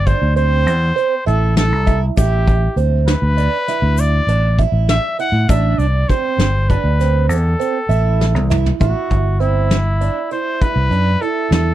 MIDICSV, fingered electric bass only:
0, 0, Header, 1, 2, 480
1, 0, Start_track
1, 0, Tempo, 602410
1, 1735, Time_signature, 11, 3, 24, 8
1, 9357, End_track
2, 0, Start_track
2, 0, Title_t, "Fingered electric bass"
2, 0, Program_c, 0, 33
2, 0, Note_on_c, 0, 31, 92
2, 103, Note_off_c, 0, 31, 0
2, 173, Note_on_c, 0, 38, 89
2, 530, Note_off_c, 0, 38, 0
2, 530, Note_on_c, 0, 40, 94
2, 726, Note_off_c, 0, 40, 0
2, 1013, Note_on_c, 0, 33, 84
2, 1373, Note_off_c, 0, 33, 0
2, 1373, Note_on_c, 0, 36, 76
2, 1666, Note_off_c, 0, 36, 0
2, 1731, Note_on_c, 0, 33, 91
2, 2122, Note_off_c, 0, 33, 0
2, 2202, Note_on_c, 0, 38, 78
2, 2499, Note_off_c, 0, 38, 0
2, 2565, Note_on_c, 0, 38, 93
2, 2764, Note_off_c, 0, 38, 0
2, 3045, Note_on_c, 0, 38, 83
2, 3341, Note_off_c, 0, 38, 0
2, 3402, Note_on_c, 0, 33, 70
2, 3699, Note_off_c, 0, 33, 0
2, 3762, Note_on_c, 0, 33, 80
2, 3962, Note_off_c, 0, 33, 0
2, 4239, Note_on_c, 0, 45, 71
2, 4343, Note_off_c, 0, 45, 0
2, 4374, Note_on_c, 0, 33, 98
2, 4569, Note_off_c, 0, 33, 0
2, 4607, Note_on_c, 0, 36, 76
2, 4805, Note_off_c, 0, 36, 0
2, 5087, Note_on_c, 0, 31, 91
2, 5382, Note_off_c, 0, 31, 0
2, 5449, Note_on_c, 0, 38, 80
2, 5808, Note_off_c, 0, 38, 0
2, 5808, Note_on_c, 0, 40, 88
2, 6006, Note_off_c, 0, 40, 0
2, 6286, Note_on_c, 0, 33, 77
2, 6650, Note_off_c, 0, 33, 0
2, 6650, Note_on_c, 0, 36, 73
2, 6944, Note_off_c, 0, 36, 0
2, 7015, Note_on_c, 0, 33, 76
2, 7112, Note_off_c, 0, 33, 0
2, 7256, Note_on_c, 0, 31, 72
2, 8035, Note_off_c, 0, 31, 0
2, 8572, Note_on_c, 0, 36, 85
2, 8670, Note_off_c, 0, 36, 0
2, 8687, Note_on_c, 0, 42, 70
2, 8885, Note_off_c, 0, 42, 0
2, 9171, Note_on_c, 0, 40, 83
2, 9357, Note_off_c, 0, 40, 0
2, 9357, End_track
0, 0, End_of_file